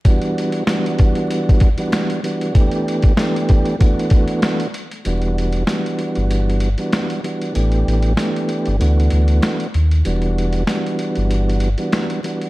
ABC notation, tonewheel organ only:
X:1
M:4/4
L:1/16
Q:"Swing 16ths" 1/4=96
K:Em
V:1 name="Tonewheel organ"
[E,G,B,DF]4 [E,G,B,DF]6 z [E,G,B,DF]3 [E,G,B,DF]2 | [E,A,B,DG]4 [E,A,B,DG]4 [E,A,B,DF]6 z2 | [E,G,B,DF]4 [E,G,B,DF]6 z [E,G,B,DF]3 [E,G,B,DF]2 | [E,A,B,DG]4 [E,A,B,DG]4 [E,A,B,DF]6 z2 |
[E,G,B,DF]4 [E,G,B,DF]6 z [E,G,B,DF]3 [E,G,B,DF]2 |]